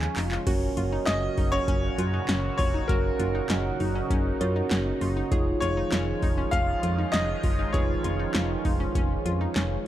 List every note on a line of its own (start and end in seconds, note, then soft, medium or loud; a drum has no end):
0.00 0.43 C#3 medium
0.00 0.43 F3 medium
0.00 0.43 G#3 medium
0.00 0.43 C#4 medium
0.00 0.44 C#4 medium
0.00 0.43 D#4 medium
0.00 0.43 F4 medium
0.00 0.43 G#4 medium
0.00 0.15 G#5 medium
0.00 clap medium
0.16 0.38 F1 medium
0.16 0.24 D#4 medium
0.16 0.45 F5 medium
0.16 clap loud
0.16 open hi-hat medium
0.31 0.40 F4 medium
0.31 clap medium
0.47 0.68 F#1 loud
0.47 5.28 A#2 medium
0.47 5.28 C#3 medium
0.47 5.28 F#3 medium
0.47 2.85 C#4 medium
0.47 2.87 C#4 medium
0.47 2.85 F#4 medium
0.47 0.63 F#4 medium
0.47 5.28 F#4 medium
0.47 2.85 A#4 medium
0.47 2.85 C#5 medium
0.47 kick loud
0.47 closed hi-hat medium
0.47 crash loud
0.77 0.98 F#1 loud
0.77 0.85 F4 medium
0.77 closed hi-hat medium
0.92 1.00 D#4 medium
1.06 1.29 F#1 loud
1.06 1.23 C#4 medium
1.06 1.54 D#5 loud
1.06 snare loud
1.06 clap loud
1.06 closed hi-hat medium
1.38 1.59 F#1 loud
1.38 1.46 D#4 medium
1.38 kick medium
1.38 open hi-hat medium
1.52 1.61 C#4 medium
1.52 2.56 C#5 loud
1.68 1.89 F#1 loud
1.68 1.84 C#4 loud
1.68 kick medium
1.68 closed hi-hat medium
1.98 2.20 F#2 loud
1.98 2.06 F4 medium
1.98 closed hi-hat medium
2.14 2.21 D#4 medium
2.29 2.50 F#1 loud
2.29 2.45 C#4 medium
2.29 snare loud
2.29 clap medium
2.29 closed hi-hat medium
2.58 2.80 F1 loud
2.58 2.67 F4 medium
2.58 2.89 C#5 loud
2.58 kick loud
2.58 open hi-hat medium
2.74 2.82 D#4 medium
2.88 3.11 F#1 loud
2.88 4.38 C#4 medium
2.88 5.29 D#4 medium
2.88 4.38 F#4 medium
2.88 3.05 F#4 loud
2.88 4.66 A#4 medium
2.88 4.38 A#4 medium
2.88 4.38 C#5 medium
2.88 kick loud
2.88 closed hi-hat medium
3.19 3.41 F#1 loud
3.19 3.27 F4 medium
3.19 closed hi-hat medium
3.35 3.43 D#4 medium
3.50 3.71 F#1 loud
3.50 3.66 C#4 medium
3.50 snare loud
3.50 clap loud
3.50 closed hi-hat medium
3.80 4.01 F#1 loud
3.80 3.88 D#4 medium
3.80 open hi-hat medium
3.95 4.03 C#4 medium
4.10 4.32 F#1 loud
4.10 4.26 C#4 loud
4.10 kick medium
4.10 closed hi-hat medium
4.41 4.62 F#2 loud
4.41 5.32 C#4 medium
4.41 4.49 F4 medium
4.41 5.32 F#4 medium
4.41 5.32 A#4 medium
4.41 5.30 C#5 medium
4.41 closed hi-hat medium
4.56 4.64 D#4 medium
4.71 4.92 F#1 loud
4.71 4.87 C#4 medium
4.71 snare loud
4.71 clap loud
4.71 closed hi-hat medium
5.01 5.23 F#1 loud
5.01 5.09 F4 medium
5.01 open hi-hat medium
5.17 5.24 D#4 medium
5.32 5.53 F1 loud
5.32 9.87 D#3 medium
5.32 9.87 F3 medium
5.32 9.87 G#3 medium
5.32 9.87 C#4 medium
5.32 7.70 D#4 medium
5.32 7.70 F4 medium
5.32 9.87 F4 medium
5.32 5.47 G#4 medium
5.32 7.70 G#4 medium
5.32 7.70 C#5 medium
5.32 kick loud
5.32 closed hi-hat medium
5.61 5.83 F1 loud
5.61 5.70 F4 medium
5.61 6.55 C#5 loud
5.61 closed hi-hat medium
5.77 5.85 D#4 medium
5.92 6.13 F1 loud
5.92 6.08 C#4 medium
5.92 snare loud
5.92 clap loud
5.92 closed hi-hat medium
6.22 6.44 F1 loud
6.22 6.31 D#4 medium
6.22 kick medium
6.22 open hi-hat medium
6.38 6.46 C#4 medium
6.51 6.74 F1 loud
6.51 6.69 C#4 medium
6.51 7.15 F5 loud
6.51 kick medium
6.51 closed hi-hat medium
6.83 7.04 F2 loud
6.83 6.91 F4 medium
6.83 closed hi-hat medium
6.98 7.06 D#4 medium
7.12 7.35 F1 loud
7.12 7.29 C#4 medium
7.12 7.75 D#5 loud
7.12 snare loud
7.12 clap loud
7.12 closed hi-hat medium
7.43 7.65 F#1 medium
7.43 7.52 F4 medium
7.43 kick loud
7.43 open hi-hat medium
7.59 7.67 D#4 medium
7.73 7.95 F1 loud
7.73 9.87 D#4 medium
7.73 9.87 F4 medium
7.73 7.90 G#4 loud
7.73 9.87 G#4 medium
7.73 9.87 B4 medium
7.73 8.60 C#5 medium
7.73 kick loud
7.73 closed hi-hat medium
8.04 8.26 F1 loud
8.04 8.12 F4 medium
8.04 closed hi-hat medium
8.19 8.27 D#4 medium
8.35 8.56 F1 loud
8.35 8.51 C#4 medium
8.35 snare loud
8.35 clap loud
8.35 closed hi-hat medium
8.65 8.86 F1 loud
8.65 8.73 D#4 medium
8.65 kick medium
8.65 open hi-hat medium
8.80 8.88 C#4 medium
8.95 9.17 F1 loud
8.95 9.11 C#4 loud
8.95 kick medium
8.95 closed hi-hat medium
9.26 9.47 F2 loud
9.26 9.34 F4 medium
9.26 closed hi-hat medium
9.41 9.49 D#4 medium
9.56 9.77 F1 loud
9.56 9.72 C#4 medium
9.56 snare loud
9.56 clap loud
9.56 closed hi-hat medium